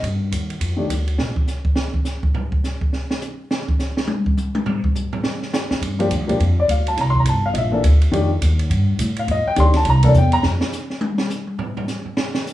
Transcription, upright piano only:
0.77 D#3 A3 D4 G4
5.99 F3 A#3 D4 G4
6.27 F3 A#3 D4 G4
6.60 D5
6.71 F5
6.88 A5
7.01 A#5
7.10 C6
7.20 A#5
7.29 A5
7.46 F5
7.53 D#5
7.58 E5
7.71 E3 A#3 D4 A4
8.11 D#3 A3 D4 G4
9.19 F5
9.31 D#5
9.48 G5
9.56 D#3 A3 D4 G4 C6
9.77 A5
9.90 A#5
10.03 E3 A#3 D4 A4 D5
10.18 G5
10.33 A#5

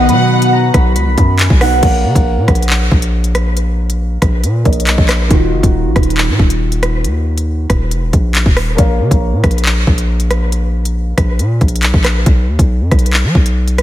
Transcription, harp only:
Already playing: F#5 G#5 A#5
0.09 B5
0.53 A#5
0.74 B5
0.96 B5
1.39 G#5
1.61 F#5

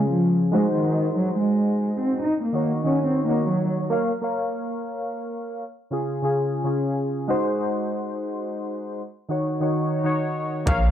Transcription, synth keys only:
Already playing: C#3 C#4 F4 G#4
0.52 G#3 D#4 F#4 C5
0.83 G#3 D#4 F#4 C5
2.52 D#3 D#4 F#4 C#5
2.84 D#3 D#4 F#4 C#5
3.27 D#3 D#4 F#4 C#5
3.90 A#3 A#4 C#5 F5
4.21 A#3 A#4 C#5 F5
5.91 C#3 C#4 F4 G#4
6.22 C#3 C#4 F4 G#4
6.64 C#3 C#4 F4 G#4
7.28 G#3 D#4 F#4 C5
7.59 G#3 D#4 F#4 C5
9.29 D#3 D#4 F#4 C#5
9.60 D#3 D#4 F#4 C#5
10.04 D#3 D#4 F#4 C#5
10.66 A#3 A#4 C#5 F5

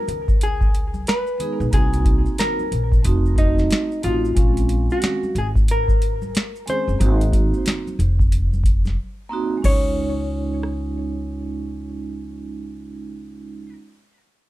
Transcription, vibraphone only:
1.38 G#3 B3 D#4 G#4
1.71 A#3 C4 D#4 F#4
3.03 A3 C4 D#4 F#4
4.02 A3 C4 D#4 F#4
4.35 G#3 C4 C#4 F5
6.66 G#3 C4 C#4 G#4
6.98 A#3 C4 D#4 F#4
9.29 A#3 C4 D#4 F#4
9.57 G#3
9.62 C#4
9.67 D#4
9.71 F4

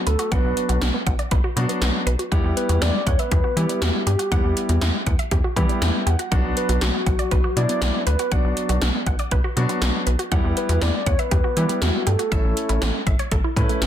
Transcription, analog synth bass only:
0.07 D2
0.32 B1
0.44 B1
0.69 B1
0.81 B1
1.07 B1
1.31 B1
1.56 B2
1.81 B1
2.06 B1
2.32 E2
2.44 E2
2.69 E2
2.82 E2
3.07 E2
3.32 E2
3.57 E3
3.82 E2
4.07 G2
4.32 E2
4.44 E2
4.69 E2
4.82 E2
5.07 E2
5.31 E2
5.57 E3
5.82 E2
6.06 E2
6.32 B1
6.44 B1
6.69 B1
6.81 B1
7.06 B1
7.32 B1
7.56 B2
7.82 B1
8.07 D2
8.32 B1
8.44 B1
8.69 B1
8.81 B1
9.06 B1
9.32 B1
9.57 B2
9.82 B1
10.07 B1
10.32 E2
10.44 E2
10.69 E2
10.82 E2
11.07 E2
11.32 E2
11.57 E3
11.82 E2
12.07 G2
12.32 A1
12.44 A1
12.69 A1
12.82 A1
13.07 A1
13.31 A1
13.56 A2
13.81 A1

